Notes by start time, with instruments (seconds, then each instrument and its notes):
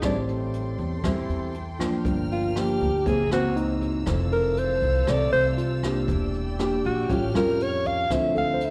0.02 upright bass A1, nylon-string guitar A2 G3 C4 E4, alto saxophone D4, string section A4 G5 C6, kick, cross-stick, closed hi-hat
0.28 closed hi-hat
0.53 closed hi-hat
0.79 upright bass E2, kick, closed hi-hat
1.04 upright bass E2, nylon-string guitar E3 G3 C4 E4, kick, cross-stick, closed hi-hat
1.29 upright bass E2, closed hi-hat
1.54 closed hi-hat
1.79 nylon-string guitar F3 A#3 D4, kick, cross-stick, closed hi-hat
2.04 upright bass G1, nylon-string guitar G2, string section A#4 F6, kick, closed hi-hat
2.31 alto saxophone F4, closed hi-hat
2.56 nylon-string guitar F3 A#3 D4, alto saxophone G4, cross-stick, closed hi-hat
2.81 upright bass D2, kick, closed hi-hat
3.04 upright bass F#1, nylon-string guitar F#2 E3 A#3 C4, alto saxophone G#4, string section C5 A#5 E6, kick, closed hi-hat
3.30 upright bass C#2, nylon-string guitar E3 A#3 C4, alto saxophone F#4, cross-stick, closed hi-hat
3.56 tine electric piano D#4, closed hi-hat
3.82 kick, closed hi-hat
4.06 upright bass F1, nylon-string guitar F2 E3 A3 C4, string section A4 F5, kick, cross-stick, closed hi-hat
4.32 alto saxophone A#4, closed hi-hat
4.57 alto saxophone C5, closed hi-hat
4.82 upright bass C2, kick, closed hi-hat
5.07 upright bass C2, nylon-string guitar C3 E3 A3 C4, alto saxophone D5, kick, cross-stick, closed hi-hat
5.33 upright bass C2, alto saxophone C5, closed hi-hat
5.58 tine electric piano F4, closed hi-hat
5.83 nylon-string guitar A#3 D4 G4, kick, cross-stick, closed hi-hat
6.08 upright bass E1, nylon-string guitar E3, string section D5 G5, kick, closed hi-hat
6.34 closed hi-hat
6.59 nylon-string guitar A#3 D4 G4, cross-stick, closed hi-hat
6.84 upright bass A#1, alto saxophone F#4, kick, closed hi-hat
7.09 upright bass A1, nylon-string guitar A2 G3 C#4 F4, alto saxophone G4, string section C#5 F6, kick, closed hi-hat
7.34 upright bass F2, nylon-string guitar G3 C#4 F4, alto saxophone A#4, cross-stick, closed hi-hat
7.60 alto saxophone C#5, closed hi-hat
7.85 alto saxophone F5, kick, closed hi-hat
8.10 upright bass D2, nylon-string guitar D3 F3 C4 E4, alto saxophone E5, kick, cross-stick, closed hi-hat
8.35 upright bass D2, tine electric piano A4, alto saxophone F5, closed hi-hat
8.54 tine electric piano C5
8.60 closed hi-hat
8.65 alto saxophone E5